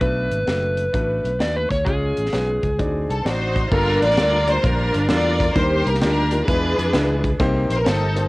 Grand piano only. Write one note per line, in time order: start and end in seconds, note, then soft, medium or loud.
0.01 0.74 B2 medium
0.01 0.36 A3 medium
0.01 0.36 D4 medium
0.01 0.37 F#4 medium
0.01 0.37 B4 loud
0.46 0.82 A3 medium
0.46 0.82 D4 medium
0.46 0.82 F#4 medium
0.46 0.83 A4 medium
0.93 1.28 A3 medium
0.93 1.29 D4 medium
0.93 1.29 F#4 medium
0.93 1.29 B4 medium
1.39 1.75 A3 medium
1.39 1.75 D4 medium
1.39 1.75 F#4 medium
1.39 1.75 B4 medium
1.85 2.59 C#3 medium
1.85 2.21 G#3 medium
1.85 2.21 C#4 medium
1.85 2.21 F4 medium
1.85 2.22 C#5 loud
2.32 2.67 G#3 medium
2.32 2.67 C#4 medium
2.32 2.68 F4 medium
2.32 2.68 B4 medium
2.79 3.52 D3 medium
2.79 3.14 C4 medium
2.79 3.14 D#4 medium
2.79 3.14 F#4 medium
2.79 3.14 D5 medium
3.25 3.60 C4 medium
3.25 3.60 D#4 medium
3.25 3.60 F#4 medium
3.25 3.60 D5 medium
3.72 4.44 G2 medium
3.72 4.06 G3 loud
3.72 4.06 A#3 medium
3.72 4.06 D4 medium
3.72 4.07 F4 medium
3.72 4.07 A4 loud
4.17 4.37 G3 medium
4.17 4.37 A#3 medium
4.17 4.37 D4 medium
4.17 4.37 F4 medium
4.17 4.37 A4 medium
4.47 4.58 G3 medium
4.47 4.58 A#3 medium
4.47 4.58 D4 medium
4.47 4.58 F4 medium
4.47 4.58 C5 medium
4.63 4.98 G3 medium
4.63 4.98 A#3 medium
4.63 4.98 D4 medium
4.63 4.98 F4 medium
4.63 4.98 C5 medium
5.08 5.44 G3 medium
5.08 5.44 A#3 medium
5.08 5.44 D4 medium
5.08 5.44 F4 medium
5.08 5.44 A4 medium
5.55 6.28 D#3 medium
5.55 5.90 G3 loud
5.55 5.90 A#3 medium
5.55 5.91 D4 medium
5.55 5.91 D#4 medium
5.55 5.91 A#4 loud
6.01 6.21 G3 medium
6.01 6.21 A#3 medium
6.01 6.21 D4 medium
6.01 6.22 D#4 medium
6.01 6.22 F4 medium
6.31 6.42 G3 medium
6.31 6.42 A#3 medium
6.31 6.42 D4 medium
6.31 6.42 D#4 medium
6.31 6.42 F4 medium
6.47 7.20 E3 medium
6.47 6.82 G#3 medium
6.47 6.83 D4 medium
6.47 6.82 E4 medium
6.47 6.83 F4 medium
6.47 6.83 B4 medium
6.93 7.28 G#3 medium
6.93 7.28 D4 medium
6.93 7.28 E4 medium
6.93 7.28 F4 medium
6.93 7.28 B4 medium
7.40 8.12 C3 medium
7.40 7.74 A#3 loud
7.40 7.75 C4 loud
7.40 7.75 D#4 loud
7.40 7.75 G4 loud
7.40 7.75 C5 loud
7.85 8.05 A#3 medium
7.85 8.05 C4 medium
7.85 8.05 D#4 medium
7.85 8.05 G4 medium
7.85 8.05 C5 medium
8.16 8.26 A#3 medium
8.16 8.26 C4 medium
8.16 8.26 D#4 medium
8.16 8.27 G4 medium
8.16 8.27 C5 medium